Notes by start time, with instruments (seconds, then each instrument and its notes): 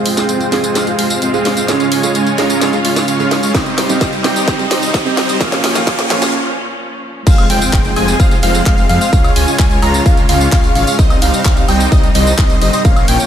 Already playing: string section F2 C3 G#3, grand piano G#3 C4 F4 G#4, riser
0.06 supersaw synth G#3 C4 F4 C5 G5, open hi-hat
0.17 grand piano G#3 C4 F4 G#4, snare, closed hi-hat, tambourine
0.29 supersaw synth G#3 C4 F4 C5 G5, closed hi-hat, tambourine
0.41 closed hi-hat, tambourine
0.52 grand piano G#3 C4 F4 G#4, supersaw synth G#3 C4 F4 C5 G#5, snare, open hi-hat
0.64 closed hi-hat, tambourine
0.75 supersaw synth G#3 C4 F4 C5 F5, snare, closed hi-hat, tambourine
0.86 grand piano G#3 C4 F4 G#4, closed hi-hat, tambourine
0.99 supersaw synth G#3 C4 F4 C5 F5, open hi-hat
1.10 closed hi-hat, tambourine
1.22 supersaw synth G#3 C4 F4 C5 F5, closed hi-hat, tambourine
1.33 grand piano G#3 C4 F4 G#4, tambourine
1.45 supersaw synth G#3 C4 F4 C5 F5, snare, open hi-hat
1.57 supersaw synth G#3 C4 F4 C5 F5, closed hi-hat, tambourine
1.68 grand piano C#3 G#3 C#4 F4 G#4, string section C#3 F4, supersaw synth G#3 C#4 F4 C#5 F5, snare, closed hi-hat, tambourine
1.80 closed hi-hat, tambourine
1.92 supersaw synth G#3 C#4 F4 C#5 G#5, open hi-hat
2.03 grand piano C#3 G#3 C#4 F4 G#4, closed hi-hat, tambourine
2.15 supersaw synth G#3 C#4 F4 C#5 G#5, closed hi-hat, tambourine
2.27 closed hi-hat, tambourine
2.38 grand piano C#3 G#3 C#4 F4 G#4, supersaw synth G#3 C#4 F4 C#5 A#5, snare, open hi-hat
2.50 closed hi-hat, tambourine
2.61 supersaw synth G#3 C#4 F4 C#5 F5, snare, closed hi-hat, tambourine
2.73 grand piano C#3 G#3 C#4 F4 G#4, closed hi-hat, tambourine
2.85 supersaw synth G#3 C#4 F4 C#5 F5, open hi-hat
2.96 snare, closed hi-hat, tambourine
3.08 supersaw synth G#3 C#4 F4 C#5 F5, closed hi-hat, tambourine
3.19 grand piano C#3 G#3 C#4 F4 G#4, tambourine
3.31 supersaw synth G#3 C#4 F4 C#5 F5, snare, open hi-hat
3.43 supersaw synth G#3 C#4 F4 C#5 F5, closed hi-hat, tambourine
3.54 grand piano C3 G3 C4 D#4 G4, string section C3 G3 D#4, supersaw synth G3 C4 D#4 C5 D#5, kick, snare, closed hi-hat, tambourine
3.66 closed hi-hat, tambourine
3.78 supersaw synth G3 C4 D#4 C5 F5, snare, open hi-hat
3.89 grand piano C3 G3 C4 D#4 G4, closed hi-hat, tambourine
4.01 supersaw synth G3 C4 D#4 C5 F5, kick, snare, closed hi-hat, tambourine
4.13 closed hi-hat, tambourine
4.24 grand piano C3 G3 C4 D#4 G4, supersaw synth G3 C4 D#4 C5 G5, snare, open hi-hat
4.36 closed hi-hat, tambourine
4.48 supersaw synth G3 C4 D#4 C5 D#5, kick, snare, closed hi-hat, tambourine
4.59 grand piano C3 G3 C4 D#4 G4, closed hi-hat, tambourine
4.71 supersaw synth G3 C4 D#4 C5 D#5, snare, open hi-hat
4.83 closed hi-hat, tambourine
4.94 supersaw synth G3 C4 D#4 C5 D#5, kick, snare, closed hi-hat, tambourine
5.05 grand piano C3 G3 C4 D#4 G4, tambourine
5.17 supersaw synth G3 C4 D#4 C5 D#5, snare, open hi-hat
5.29 supersaw synth G3 C4 D#4 C5 D#5, closed hi-hat, tambourine
5.40 grand piano A#2 F3 A#3 C#4 F4, string section A#2 F3 C#4, supersaw synth A#3 C#4 F4 C#5 F5, kick, snare, closed hi-hat, tambourine
5.52 snare, closed hi-hat, tambourine
5.64 supersaw synth A#3 C#4 F4 C#5 G5, snare, open hi-hat
5.75 grand piano A#2 F3 A#3 C#4 F4, snare, closed hi-hat, tambourine
5.87 supersaw synth A#3 C#4 F4 C#5 G5, kick, snare, closed hi-hat, tambourine
5.99 snare, closed hi-hat, tambourine
6.10 grand piano A#2 F3 A#3 C#4 F4, supersaw synth A#3 C#4 F4 C#5 G#5, snare, open hi-hat
6.22 snare, closed hi-hat, tambourine
7.27 detuned saw bass F1, string section F3 C4 G#4, supersaw synth G#3 C4 F4 C5 F5, digital synth lead F5, kick, closed hi-hat, crash, tambourine, impact
7.38 closed hi-hat, tambourine, high woodblock
7.50 detuned saw bass F1, supersaw synth G#3 C4 F4 C5 G5, digital synth lead G5, open hi-hat
7.62 closed hi-hat, tambourine
7.73 detuned saw bass F1, supersaw synth G#3 C4 F4 C5 G5, digital synth lead G5, kick, clap, closed hi-hat, tambourine
7.85 closed hi-hat, tambourine
7.96 detuned saw bass F1, supersaw synth G#3 C4 F4 C5 G#5, digital synth lead G#5, open hi-hat, high woodblock
8.08 closed hi-hat, tambourine
8.20 detuned saw bass F1, supersaw synth G#3 C4 F4 C5 F5, digital synth lead F5, kick, closed hi-hat, tambourine
8.31 closed hi-hat, tambourine
8.43 detuned saw bass F1, supersaw synth G#3 C4 F4 C5 F5, digital synth lead F5, open hi-hat
8.55 closed hi-hat, tambourine
8.66 detuned saw bass F1, supersaw synth G#3 C4 F4 C5 F5, digital synth lead F5, kick, clap, closed hi-hat, tambourine
8.78 closed hi-hat, tambourine
8.89 detuned saw bass F2, supersaw synth G#3 C4 F4 C5 F5, digital synth lead F5, open hi-hat
9.01 supersaw synth G#3 C4 F4 C5 F5, digital synth lead F5, closed hi-hat, tambourine
9.13 detuned saw bass C#2, string section C#3 G#3 F4, supersaw synth G#3 C#4 F4 C#5 F5, digital synth lead F5, kick, closed hi-hat, tambourine
9.24 closed hi-hat, tambourine, high woodblock
9.36 detuned saw bass C#2, supersaw synth G#3 C#4 F4 C#5 G#5, digital synth lead G#5, open hi-hat
9.48 tambourine
9.59 detuned saw bass C#2, supersaw synth G#3 C#4 F4 C#5 G#5, digital synth lead G#5, kick, clap, closed hi-hat, tambourine
9.71 closed hi-hat, tambourine
9.82 detuned saw bass C#2, supersaw synth G#3 C#4 F4 C#5 A#5, digital synth lead A#5, open hi-hat, high woodblock
9.94 closed hi-hat, tambourine
10.06 detuned saw bass C#2, supersaw synth G#3 C#4 F4 C#5 F5, digital synth lead F5, kick, closed hi-hat, tambourine
10.17 closed hi-hat, tambourine
10.29 detuned saw bass C#2, supersaw synth G#3 C#4 F4 C#5 F5, digital synth lead F5, open hi-hat
10.41 closed hi-hat, tambourine
10.52 detuned saw bass C#2, supersaw synth G#3 C#4 F4 C#5 F5, digital synth lead F5, kick, clap, closed hi-hat, tambourine
10.64 closed hi-hat, tambourine
10.75 detuned saw bass G#1, supersaw synth G#3 C#4 F4 C#5 F5, digital synth lead F5, open hi-hat
10.87 supersaw synth G#3 C#4 F4 C#5 F5, digital synth lead F5, closed hi-hat, tambourine
10.99 detuned saw bass C2, string section C3 G3 D#4, supersaw synth G3 C4 D#4 C5 D#5, digital synth lead D#5, kick, closed hi-hat, tambourine
11.10 closed hi-hat, tambourine, high woodblock
11.22 detuned saw bass C2, supersaw synth G3 C4 D#4 C5 F5, digital synth lead F5, open hi-hat
11.34 closed hi-hat, tambourine
11.45 detuned saw bass C2, supersaw synth G3 C4 D#4 C5 F5, digital synth lead F5, kick, clap, closed hi-hat, tambourine
11.57 closed hi-hat, tambourine
11.68 detuned saw bass C2, supersaw synth G3 C4 D#4 C5 G5, digital synth lead G5, open hi-hat, high woodblock
11.80 closed hi-hat, tambourine
11.92 detuned saw bass C2, supersaw synth G3 C4 D#4 C5 D#5, digital synth lead D#5, kick, closed hi-hat, tambourine
12.03 closed hi-hat, tambourine
12.15 detuned saw bass C2, supersaw synth G3 C4 D#4 C5 D#5, digital synth lead D#5, open hi-hat
12.27 closed hi-hat, tambourine
12.38 detuned saw bass C2, supersaw synth G3 C4 D#4 C5 D#5, digital synth lead D#5, kick, clap, closed hi-hat, tambourine
12.50 closed hi-hat, tambourine
12.62 detuned saw bass G1, supersaw synth G3 C4 D#4 C5 D#5, digital synth lead D#5, open hi-hat
12.73 supersaw synth G3 C4 D#4 C5 D#5, digital synth lead D#5, closed hi-hat, tambourine
12.85 detuned saw bass A#1, string section F3 A#3 C#4, supersaw synth A#3 C#4 F4 C#5 F5, digital synth lead F5, kick, closed hi-hat, tambourine
12.96 closed hi-hat, tambourine, high woodblock
13.08 detuned saw bass A#1, supersaw synth A#3 C#4 F4 C#5 G5, digital synth lead G5, open hi-hat
13.20 closed hi-hat, tambourine